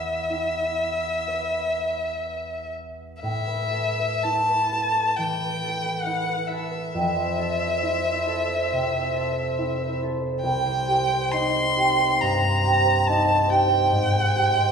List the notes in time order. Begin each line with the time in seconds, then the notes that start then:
Already playing: E2 E4 E5
0.30 E4
1.27 B4 C#5
3.21 A2 E5
3.47 B4
3.71 A4
3.99 B4
4.23 E4 A5
4.49 B4
4.72 A4
4.96 B4
5.16 E3 G5
5.41 B4
5.63 A4
5.86 B4
6.03 E4 F#5
6.29 B4
6.48 A4 E5
6.71 B4
6.94 F2
7.16 C5
7.38 A4
7.61 C5
7.83 E4
8.04 C5
8.27 A4
8.49 C5
8.72 C3
8.91 C5
9.14 A4
9.36 C5
9.58 E4
9.81 C5
10.03 A4
10.23 C5
10.42 C2 G5
10.65 C5
10.88 G4
11.10 C5
11.32 D#4 C6
11.54 C5
11.77 G4
12.00 C5
12.21 G2 A#5
12.41 C5
12.64 G4
12.85 C5
13.07 D#4 A5
13.30 C5
13.50 G4 G5
13.70 C5
13.91 G#2
14.13 C5
14.36 G4
14.58 C5